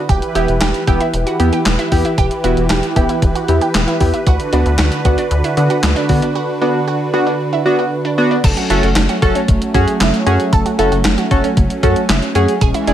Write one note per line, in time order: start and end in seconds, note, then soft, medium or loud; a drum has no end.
0.09 0.21 E1 loud
0.09 4.23 E3 medium
0.09 4.23 E4 medium
0.09 0.26 G4 loud
0.09 4.23 G4 medium
0.09 8.40 B4 medium
0.09 kick loud
0.09 closed hi-hat medium
0.22 closed hi-hat medium
0.35 0.47 E1 loud
0.35 0.54 B3 medium
0.35 0.52 E4 medium
0.35 0.54 E4 medium
0.35 0.54 G4 medium
0.35 closed hi-hat medium
0.48 0.60 E1 loud
0.48 closed hi-hat soft
0.61 0.73 E1 loud
0.61 0.78 G4 medium
0.61 snare loud
0.61 clap medium
0.61 closed hi-hat medium
0.74 closed hi-hat medium
0.87 0.99 E1 loud
0.87 1.06 B3 medium
0.87 1.06 E4 medium
0.87 1.06 G4 medium
0.87 0.96 G4 medium
0.87 kick loud
0.87 closed hi-hat medium
1.00 1.17 E4 medium
1.00 closed hi-hat medium
1.13 1.25 E1 loud
1.13 closed hi-hat medium
1.27 1.43 F#4 medium
1.27 closed hi-hat medium
1.40 1.51 E2 loud
1.40 1.58 B3 medium
1.40 1.58 E4 medium
1.40 1.58 G4 medium
1.40 closed hi-hat medium
1.53 1.69 G4 medium
1.53 closed hi-hat medium
1.66 1.77 E1 loud
1.66 snare loud
1.66 clap loud
1.66 closed hi-hat medium
1.79 1.96 E4 medium
1.79 closed hi-hat soft
1.92 2.03 E2 loud
1.92 2.10 B3 medium
1.92 2.10 E4 medium
1.92 2.10 G4 loud
1.92 kick medium
1.92 open hi-hat medium
2.05 2.13 E4 medium
2.05 closed hi-hat medium
2.18 2.29 E1 loud
2.18 2.35 G4 loud
2.18 kick loud
2.18 closed hi-hat medium
2.31 closed hi-hat medium
2.44 2.55 E1 loud
2.44 2.62 B3 medium
2.44 2.62 E4 medium
2.44 2.61 E4 medium
2.44 2.62 F#4 medium
2.44 closed hi-hat medium
2.57 2.68 E1 loud
2.57 closed hi-hat soft
2.70 2.82 E1 loud
2.70 2.87 G4 medium
2.70 snare loud
2.70 clap medium
2.70 closed hi-hat medium
2.83 closed hi-hat medium
2.96 3.08 E1 loud
2.96 3.14 B3 medium
2.96 3.14 E4 medium
2.96 3.14 G4 medium
2.96 3.05 G4 medium
2.96 kick loud
2.96 closed hi-hat medium
3.09 3.26 E4 medium
3.09 closed hi-hat medium
3.22 3.34 E1 loud
3.22 kick loud
3.22 closed hi-hat medium
3.35 3.52 F#4 medium
3.35 closed hi-hat medium
3.48 3.60 E2 loud
3.48 3.67 B3 medium
3.48 3.67 E4 medium
3.48 3.67 G4 loud
3.48 closed hi-hat medium
3.61 3.78 G4 medium
3.61 closed hi-hat medium
3.74 3.86 E1 loud
3.74 snare loud
3.74 clap loud
3.74 closed hi-hat medium
3.88 4.04 E4 medium
3.88 closed hi-hat soft
4.00 4.12 E2 loud
4.00 4.19 B3 medium
4.00 4.19 E4 medium
4.00 4.19 G4 loud
4.00 kick medium
4.00 open hi-hat medium
4.14 4.22 E4 medium
4.14 closed hi-hat medium
4.27 4.38 D2 loud
4.27 8.40 D3 medium
4.27 8.40 D4 medium
4.27 4.43 F#4 loud
4.27 8.40 F#4 medium
4.27 kick loud
4.27 closed hi-hat medium
4.40 closed hi-hat medium
4.53 4.64 D2 loud
4.53 4.71 B3 medium
4.53 4.71 D4 medium
4.53 4.69 D4 medium
4.53 4.71 F#4 medium
4.53 closed hi-hat medium
4.66 4.77 D2 medium
4.66 closed hi-hat soft
4.79 4.90 D2 loud
4.79 4.96 F#4 medium
4.79 snare loud
4.79 clap medium
4.79 closed hi-hat medium
4.92 closed hi-hat medium
5.05 5.16 D2 loud
5.05 5.23 B3 medium
5.05 5.23 D4 medium
5.05 5.23 F#4 loud
5.05 5.13 F#4 medium
5.05 kick loud
5.05 closed hi-hat medium
5.18 5.35 D4 medium
5.18 closed hi-hat medium
5.31 5.42 D2 loud
5.31 closed hi-hat medium
5.44 5.61 E4 medium
5.44 closed hi-hat medium
5.57 5.68 D3 medium
5.57 5.75 B3 medium
5.57 5.75 D4 medium
5.57 5.75 F#4 medium
5.57 closed hi-hat medium
5.70 5.87 F#4 medium
5.70 closed hi-hat medium
5.83 5.95 D2 loud
5.83 snare loud
5.83 clap loud
5.83 closed hi-hat medium
5.96 6.13 D4 medium
5.96 closed hi-hat soft
6.09 6.21 D3 medium
6.09 6.28 B3 medium
6.09 6.28 D4 medium
6.09 6.28 F#4 medium
6.09 kick medium
6.09 open hi-hat medium
6.22 6.31 D4 medium
6.22 closed hi-hat medium
6.35 6.52 F#4 loud
6.61 6.80 B3 medium
6.61 6.78 D4 medium
6.61 6.80 D4 medium
6.61 6.80 F#4 medium
6.88 7.04 F#4 medium
7.13 7.32 B3 medium
7.13 7.32 D4 medium
7.13 7.32 F#4 loud
7.13 7.22 F#4 medium
7.27 7.43 D4 medium
7.53 7.69 E4 medium
7.66 7.84 B3 medium
7.66 7.84 D4 medium
7.66 7.84 F#4 loud
7.79 7.96 F#4 medium
8.05 8.22 D4 medium
8.18 8.36 B3 medium
8.18 8.36 D4 medium
8.18 8.36 F#4 loud
8.31 8.39 D4 medium
8.44 8.55 F#1 loud
8.44 12.57 F#3 medium
8.44 12.57 A3 medium
8.44 12.94 C#4 medium
8.44 8.52 A4 loud
8.44 kick loud
8.44 closed hi-hat medium
8.44 crash loud
8.57 8.65 F#4 medium
8.57 closed hi-hat medium
8.70 8.81 F#1 loud
8.70 8.88 C#4 medium
8.70 8.78 E4 medium
8.70 8.88 F#4 medium
8.70 8.88 A4 medium
8.70 closed hi-hat medium
8.83 8.94 F#1 medium
8.83 9.00 F#4 medium
8.83 closed hi-hat soft
8.96 9.08 F#1 loud
8.96 snare loud
8.96 clap medium
8.96 closed hi-hat medium
9.09 9.26 F#4 medium
9.09 closed hi-hat medium
9.22 9.34 F#1 loud
9.22 9.40 C#4 medium
9.22 9.40 F#4 medium
9.22 9.41 A4 loud
9.22 kick loud
9.22 closed hi-hat medium
9.35 9.52 C#4 medium
9.35 closed hi-hat medium
9.48 9.60 F#1 loud
9.48 kick loud
9.48 closed hi-hat medium
9.62 closed hi-hat medium
9.74 9.86 F#2 loud
9.74 9.93 C#4 medium
9.74 9.91 F#4 medium
9.74 9.93 F#4 medium
9.74 9.93 G#4 loud
9.74 kick medium
9.74 closed hi-hat medium
9.88 closed hi-hat medium
10.00 10.12 F#1 loud
10.00 10.17 E4 medium
10.00 snare loud
10.00 clap loud
10.00 closed hi-hat medium
10.14 closed hi-hat soft
10.26 10.38 F#2 loud
10.26 10.45 C#4 medium
10.26 10.45 F#4 medium
10.26 10.43 F#4 medium
10.26 10.45 G#4 loud
10.26 closed hi-hat medium
10.40 closed hi-hat medium
10.53 10.64 F#1 loud
10.53 10.61 A4 loud
10.53 kick loud
10.53 closed hi-hat medium
10.66 10.74 F#4 medium
10.66 closed hi-hat medium
10.79 10.90 F#1 loud
10.79 10.97 C#4 medium
10.79 10.87 E4 medium
10.79 10.97 F#4 medium
10.79 10.97 A4 loud
10.79 closed hi-hat medium
10.92 11.03 F#1 loud
10.92 11.08 F#4 medium
10.92 closed hi-hat soft
11.05 11.16 F#1 loud
11.05 snare loud
11.05 clap loud
11.05 closed hi-hat medium
11.18 11.35 F#4 medium
11.18 closed hi-hat medium
11.31 11.42 F#1 loud
11.31 11.49 C#4 medium
11.31 11.49 F#4 medium
11.31 11.49 A4 loud
11.31 kick loud
11.31 closed hi-hat medium
11.44 11.61 C#4 medium
11.44 closed hi-hat medium
11.57 11.68 F#1 loud
11.57 kick loud
11.57 closed hi-hat medium
11.70 closed hi-hat medium
11.83 11.95 F#2 loud
11.83 12.01 C#4 medium
11.83 12.01 F#4 medium
11.83 12.00 F#4 medium
11.83 12.01 A4 loud
11.83 kick medium
11.83 closed hi-hat medium
11.96 closed hi-hat medium
12.09 12.21 F#1 loud
12.09 12.26 E4 medium
12.09 snare loud
12.09 clap loud
12.09 closed hi-hat medium
12.22 closed hi-hat soft
12.35 12.47 F#2 loud
12.35 12.54 C#4 medium
12.35 12.52 F#4 medium
12.35 12.54 F#4 medium
12.35 12.54 G#4 loud
12.35 closed hi-hat medium
12.48 closed hi-hat medium
12.61 12.73 E1 loud
12.61 12.94 E3 medium
12.61 12.94 G#3 medium
12.61 12.70 G#4 loud
12.61 kick loud
12.61 closed hi-hat medium
12.74 12.83 E4 medium
12.74 closed hi-hat medium
12.87 12.94 E1 loud
12.87 12.94 C#4 medium
12.87 12.94 D4 medium
12.87 12.94 E4 medium
12.87 12.94 G#4 loud
12.87 closed hi-hat medium